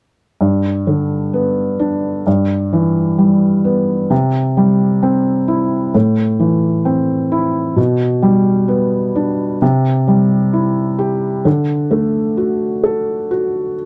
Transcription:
0.41 G2
0.87 D3
1.33 B3
1.79 D4
2.27 G2
2.73 E3
3.18 G3
3.65 B3
4.10 C3
4.57 G3
5.03 C4
5.48 E4
5.94 A2
6.40 E3
6.85 C4
7.32 E4
7.76 B2
8.22 G3
8.68 B3
9.15 D4
9.62 C3
10.08 G3
10.53 E4
10.99 G4
11.45 D3
11.91 A3
12.37 F#4
12.83 A4
13.31 F#4

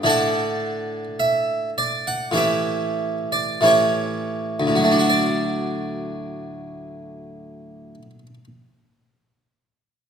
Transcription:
0.03 A2 D3 D4 A4
0.09 F#5
1.20 E5
1.78 D5
2.07 F#5
2.31 A2 E3 C#4 G4
2.37 E5
3.32 D5
3.61 A2 E3 C#4 G4
3.67 C#5
4.60 D2
4.67 A2
4.75 F#3
4.84 A3
4.91 D4
4.99 F#4
5.10 D5

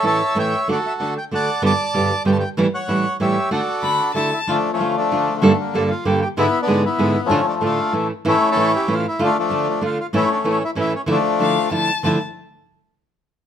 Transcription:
Already playing: A4
0.03 A2 E3 A3 C#4 E4 C#5 E5 A5
0.35 A2 E3 A3 C#4 E4 G5
0.39 C#5 E5
0.68 D3 A3 D4 F#4 D5
0.72 A4
0.86 E5
1.00 D3 A3 D4 F#4 F#5
1.18 G5
1.31 D3 A3 D4 F#4 D5 F#5 A5
1.62 G2 B2 D3 G3 B3 G4 A5
1.66 D5
1.94 G2 B2 D3 G3 B3 G4
2.25 G2 B2 D3 G3 B3 G4 G5
2.32 A5
2.40 G5
2.57 A2 E3 G3 C#4 E4
2.74 C#5 F#5
2.88 A2 E3 G3 C#4 E4
3.20 A2 E3 G3 C#4 E4 G4 C#5 E5
3.51 D3 A3 D4 F#4 A4 D5
3.82 D3 A3 D4 F#4 B5
4.00 D4
4.14 D3 A3 D4 E4 F#4 A5
4.33 E4
4.47 D3 F3 A3 D4 F4
4.73 F3 A3 C#4
4.79 D3 A3 D4 F4
4.97 F3 A3 D4
5.12 D3 A3 D4 F4
5.36 D3 A3
5.42 G2 D3 G3 A#3 D4 A4
5.60 A#3
5.74 G2 D3 G3 A#3 D4 A4
5.90 F4
6.05 G2 D3 G3 A#3 D4 G4 A4
6.21 G4
6.37 G#2 D3 G#3 B3 E4 G#4
6.62 B3 D4
6.67 G#2 D3 G#3 B3 E4 G#4
6.85 B3 E4
6.98 G#2 D3 G#3 B3 E4 G#4
7.26 F3 A3 C#4
7.30 A2 D3 A3 D4 F4
7.48 D4
7.61 A2 D3 A3 D4 F4
7.65 F4
7.93 A2 E3 A3 C#4 E4
8.25 A2 E3 A3 C#4 E4
8.51 C#4 E4 A4
8.56 A2 E3 A3 C#4 E4
8.76 G4
8.88 A2 E3 A3 C#4 E4
8.93 F4
9.08 E4
9.19 D3 A3 D4 F4
9.23 A3 D4 F4
9.38 F3 A3 D4
9.50 D3 A3 D4 F4
9.70 D4
9.81 D3 A3 D4 F4
9.85 F4
10.00 F4
10.13 A2 E3 A3 C#4 E4
10.32 D4
10.44 A2 E3 A3 C#4 E4
10.49 C#4
10.65 E4
10.75 A2 E3 A3 C#4 E4
10.80 E4
10.95 C#4
11.06 D3 F3 A3 D4 E4
11.11 D4
11.39 D3 F3 A3 D4 E4 F5
11.71 D3 F3 A3 D4 E4 A5
12.03 D3 F3 A3 D4 E4 A5

